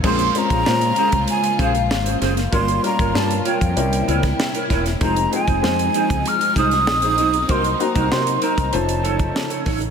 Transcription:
0.03 A#1 C#3 G#3 A#3 C4 C#4 F4 G#4 A#4 C5 C6, kick, crash
0.19 muted clean electric guitar stroke, closed hi-hat
0.35 G#3 C4 C#4 F4 A#4 A#5, muted clean electric guitar stroke, closed hi-hat
0.50 A#1 C#4 G#4 C5, kick, closed hi-hat
0.66 A#2 G#3 C4 C#4 F4 C5, snare
0.81 muted clean electric guitar stroke, closed hi-hat
0.96 C#4 G#4 C5, closed hi-hat
1.12 C2, muted clean electric guitar stroke, kick, closed hi-hat
1.28 G#5, closed hi-hat
1.44 muted clean electric guitar stroke, closed hi-hat
1.59 A#1 C#4 G#4 C5 F5, kick, closed hi-hat
1.75 muted clean electric guitar stroke, closed hi-hat
1.90 G#1, muted clean electric guitar stroke, snare
2.05 C#4 G#4 C5, closed hi-hat
2.21 F#1 C#4 G#4 C5, snare, closed hi-hat
2.37 muted clean electric guitar stroke, snare, closed hi-hat
2.52 G1 A#2 G3 A#3 C#4 F4 A#4 C#5 C6, kick, closed hi-hat
2.68 muted clean electric guitar stroke, closed hi-hat
2.82 G3 A#3 C#4 F4 A#4 A#5, muted clean electric guitar stroke, closed hi-hat
2.99 G1 F4 A#4 C#5, kick, closed hi-hat
3.14 G2 G3 A#3 C#4 F4 A#4 A5, muted clean electric guitar stroke, snare
3.30 muted clean electric guitar stroke, closed hi-hat
3.45 F4 A#4 C#5 G5, closed hi-hat
3.61 F2, muted clean electric guitar stroke, kick, closed hi-hat
3.76 C2 C3 G3 C4 C#4 E4 A#4, closed hi-hat
3.92 muted clean electric guitar stroke, closed hi-hat
4.08 C#2 E4 A#4 C#5, closed hi-hat
4.23 muted clean electric guitar stroke, kick, snare, closed hi-hat
4.40 muted clean electric guitar stroke, snare
4.55 E4 A#4 C#5, closed hi-hat
4.70 E1 E4 A#4 C#5, kick, snare, closed hi-hat
4.86 muted clean electric guitar stroke, snare, closed hi-hat
5.01 F1 F3 G#3 C4 D#4 F4 G#4 C5 A#5, kick, closed hi-hat
5.16 muted clean electric guitar stroke, closed hi-hat
5.31 G#3 C4 D#4 F4 G#4 G#5, muted clean electric guitar stroke, closed hi-hat
5.47 F1 D#4 G#4 C5, kick, closed hi-hat
5.62 F2 G#3 C4 D#4 F4 C5, muted clean electric guitar stroke, snare
5.79 muted clean electric guitar stroke, closed hi-hat
5.94 D#4 G#4 C5, closed hi-hat
6.10 C#2, muted clean electric guitar stroke, kick, closed hi-hat
6.26 F6, closed hi-hat
6.41 muted clean electric guitar stroke, closed hi-hat
6.56 C2 D#4 G#4 C5 D#6, kick, closed hi-hat
6.71 muted clean electric guitar stroke, snare, closed hi-hat
6.87 A#1, muted clean electric guitar stroke, snare
7.02 D#4 G#4 C5, closed hi-hat
7.18 B1 D#4 G#4 C5, closed hi-hat
7.33 muted clean electric guitar stroke, closed hi-hat
7.48 C2 F#3 A#3 C4 D#4 F#4 A#4 C5 C6, kick, closed hi-hat
7.64 muted clean electric guitar stroke, closed hi-hat
7.79 A#3 C4 D#4 F#4 C5 A#5, muted clean electric guitar stroke, closed hi-hat
7.95 C2 D#4 A#4 C5, kick, closed hi-hat
8.11 C3 A#3 C4 D#4 F#4 C5 C6, snare
8.27 muted clean electric guitar stroke, closed hi-hat
8.42 D#4 A#4 C5 A#5, closed hi-hat
8.57 C2, muted clean electric guitar stroke, kick, closed hi-hat
8.72 F1 C#3 F3 A3 C#4 D#4 F4 C5 A5, closed hi-hat
8.88 muted clean electric guitar stroke, closed hi-hat
9.03 F#1 D#4 A4 C#5, closed hi-hat
9.19 muted clean electric guitar stroke, kick, closed hi-hat
9.35 muted clean electric guitar stroke, snare
9.50 D#4 A4 C#5, closed hi-hat
9.66 A1 D#4 A4 C#5, kick, snare, open hi-hat
9.81 muted clean electric guitar stroke, closed hi-hat

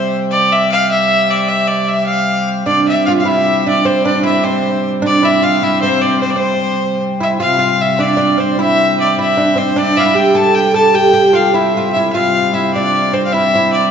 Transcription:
Already playing: C3 G3 C5
0.31 D5
0.53 E5
0.72 F5
0.91 E5
1.30 D5
1.49 E5
1.67 D5
1.88 E5
2.06 F5
2.66 C3 G3 D4 D5
2.88 E5
3.06 F4 F5
3.20 F5
3.25 E4 E5
3.66 D4 D5
3.85 C4 C5
4.05 D4 D5
4.23 E4 E5
4.44 C4 C5
5.02 D4
5.06 D5
5.23 E4 E5
5.42 F4 F5
5.63 E4 E5
5.81 C4 C5
6.01 D5
6.21 C4 C5
6.30 D5
6.36 C4 C5
7.20 E4 E5
7.40 C3 G3 F4 F5
7.59 F4
7.81 E5
7.99 D4 D5
8.17 D4
8.38 C4 C5
8.59 E4 E5
9.00 D5
9.19 E4 E5
9.37 D4
9.56 C4 C5
9.76 D4 D5
9.97 E4 E5 F5
10.04 E4 E5
10.15 G4 G5
10.35 A4 A5
10.55 G5
10.74 A4 A5
10.94 G4 G5
11.13 G4
11.33 F4 F5
11.54 E4 E5
11.77 F4
11.92 E5
11.96 E4
12.12 C3 G3 F4 F5
12.54 E4 E5
12.73 D4 D5
13.13 C4 C5
13.25 F5
13.32 E4 E5
13.55 E4
13.72 D5

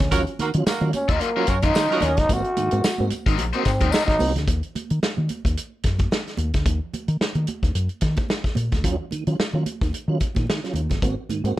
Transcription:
Already playing: C#4
0.00 D2, kick, snare, low conga
0.12 D#2 F#3 C#4 F4 F#4 A#4 C#5, kick, closed hi-hat, tambourine, muted conga, low conga
0.27 closed hi-hat
0.39 D#3 A#3 F#4 A#4, muted fingered electric bass stroke, closed hi-hat, tambourine, muted conga, high conga
0.54 D#3 F#3 C#4 F4, closed hi-hat
0.66 A#3 F#4 A#4, muted fingered electric bass stroke, snare, tambourine, muted conga
0.81 D#3 F#3 C#4 F4, high conga
0.93 C#4, closed hi-hat, tambourine, muted conga, high conga
1.08 D#2 D#3 F#3 C#4 D#4 F4 A#4, kick, closed hi-hat
1.20 A#3, closed hi-hat, muted conga
1.36 F#3 C#4 F4 F#4 A#4 C#5
1.47 F#2 C#4 F#4 A#4 C#5, kick, closed hi-hat, tambourine
1.62 D#3 F#3 C#4 D#4 F4 A#4, kick, closed hi-hat, high conga
1.74 D#3 F#3 C#4 F4 C5, snare, tambourine, muted conga
1.90 F#3 C#4 F4 F#4 A#4 D#5, snare
2.01 D#2 C#4 F4, closed hi-hat, tambourine, muted conga, high conga
2.17 G1 D#4, kick, snare, closed hi-hat, low conga
2.29 G#1 A#3 C4 F#4, kick, closed hi-hat, tambourine, low conga
2.44 closed hi-hat
2.57 G#2 D#3, muted fingered electric bass stroke, closed hi-hat, tambourine, muted conga, high conga
2.71 G#2 A#3 C4 F#4, closed hi-hat
2.84 muted fingered electric bass stroke, snare, tambourine
2.98 G#2 A#3 C4 F#4, high conga
3.10 closed hi-hat, tambourine, high conga
3.26 G#1 G#2 D#3 F#3 C4 D#4 A#4, kick, closed hi-hat
3.38 A#1, closed hi-hat, muted conga, high conga
3.53 F#3 A#3 C4 D#4 F#4 C5, closed hi-hat
3.65 G#2 C4, kick, snare, closed hi-hat, tambourine
3.80 D#2 G#2 D#3 F#3 C4 D#4 A#4, kick, closed hi-hat, high conga
3.91 F#3 C4 D#4 A#4, snare, tambourine
4.06 G#1 D#4, kick, snare, closed hi-hat
4.19 C2 A#3 C4 F#4, open hi-hat, tambourine, high conga
4.36 D2, snare, closed hi-hat, low conga
4.48 D#2, kick, closed hi-hat, muted conga, low conga
4.63 closed hi-hat
4.75 muted fingered electric bass stroke, closed hi-hat, muted conga, high conga
4.90 D#3, closed hi-hat
5.03 muted fingered electric bass stroke, snare, muted conga
5.17 D#3, high conga
5.29 closed hi-hat, muted conga, high conga
5.45 D#2, kick, closed hi-hat
5.57 closed hi-hat
5.83 F#2, kick, snare, closed hi-hat
5.99 kick, closed hi-hat, high conga
6.11 snare, muted conga
6.27 snare, closed hi-hat
6.37 D#2, closed hi-hat, muted conga, high conga
6.54 D2, kick, snare, closed hi-hat, low conga
6.66 D#2, kick, closed hi-hat, muted conga, low conga
6.93 muted fingered electric bass stroke, closed hi-hat, muted conga, high conga
7.08 D#3, closed hi-hat
7.20 muted fingered electric bass stroke, snare
7.35 D#3, closed hi-hat, high conga
7.47 closed hi-hat, muted conga, high conga
7.63 D#2, kick, closed hi-hat
7.75 F#2, closed hi-hat
7.89 closed hi-hat
8.01 D#3, kick, snare, closed hi-hat, muted conga
8.16 kick, closed hi-hat, high conga
8.29 snare, muted conga
8.44 kick, snare, closed hi-hat
8.55 A#2, closed hi-hat, high conga
8.72 D2, kick, snare, closed hi-hat, low conga
8.84 D#2 F#3 C#4 F4, kick, closed hi-hat, low conga
9.11 D#3, muted fingered electric bass stroke, closed hi-hat, high conga
9.27 D#3 F#3 C#4 F4, closed hi-hat
9.39 muted fingered electric bass stroke, snare
9.53 D#3 F#3 C#4 F4, high conga
9.66 closed hi-hat, high conga
9.81 D#2 D#3, kick, closed hi-hat
9.92 muted fingered electric bass stroke, closed hi-hat, muted conga
10.08 D#3 F#3 C#4 F4
10.20 kick, closed hi-hat, muted conga
10.35 A#2 D#3, kick, closed hi-hat, high conga
10.47 D#3, snare, muted conga
10.64 F#3 C#4 F4, snare, closed hi-hat
10.73 D#2 C#4 F4, closed hi-hat, high conga
10.90 G1, kick, snare, closed hi-hat, low conga
11.02 G#1 A#3 C4 F#4, kick, closed hi-hat, muted conga, low conga
11.29 G#2 D#3, muted fingered electric bass stroke, closed hi-hat, muted conga, high conga
11.44 G#2 A#3 C4 F#4, closed hi-hat

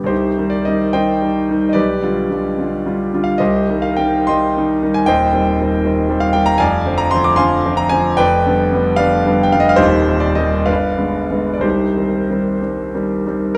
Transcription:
Already playing: G2 D3 B3 G4 G5
0.03 C2 C5
0.08 D#4 G4
0.38 D#3 G3 D#4
0.50 D5
0.65 D#3 G3 D#4 D#5
0.93 D#3 G3 D#4 C5 D#5 G5
1.22 D#3 G3 D#4
1.50 D#3 G3 D#4
1.69 D5 D#5
1.74 B1 G4 B4
2.02 D3 G3 F4
2.30 D3 G3 F4
2.59 D3 G3 F4
2.86 D3 G3 F4
3.13 D3 G3 F4
3.24 F5
3.38 C2 G4 C5 D#5
3.69 D#3 G3 D#4
3.82 F5
3.97 D#3 G3 D#4 G5
4.27 D#3 G3 D#4 D#5 G5 C6
4.57 D#3 G3 D#4
4.83 D#3 G3 D#4
4.94 G#5
5.06 D#1 D#2 C5 D#5 G5
5.33 D#3 G3 C4
5.62 D#3 G3 C4
5.85 D#3 G3 C4
6.09 D#3 G3 C4
6.20 F5
6.33 D#3 G3 C4 G5
6.46 A#5
6.58 F1 F2 D5 F5 G#5
6.86 D3 F3 C4
6.98 A#5
7.11 D3 F3 C4 C6
7.24 D6
7.36 D3 F3 C4 F5 G#5 C6
7.65 D3 F3 C4
7.77 A#5
7.89 D3 F3 C4 G#5
8.17 F1 F2 B4 D5 G5
8.46 D3 G3 B3
8.72 D3 G3 B3
8.96 D3 G3 B3 B4 D5 F5
9.26 D3 G3 B3
9.43 G5
9.52 D3 G3 B3 F5
9.60 D#5
9.69 F5
9.76 D#1 D#2 D#4 G4 C5
10.08 D#3 G3 C4
10.20 D5
10.35 D#3 G3 C4 D#5
10.66 G1 B4 D5 F5
10.97 D3 G#3 B3
11.30 D3 G#3 B3
11.54 D5
11.59 C2 D#4 G4 C5
11.97 D#3 G3 C4
12.30 D#3 G3 C4
12.62 D#3 G3 C4
12.95 D#3 G3 C4
13.27 D#3 G3 C4

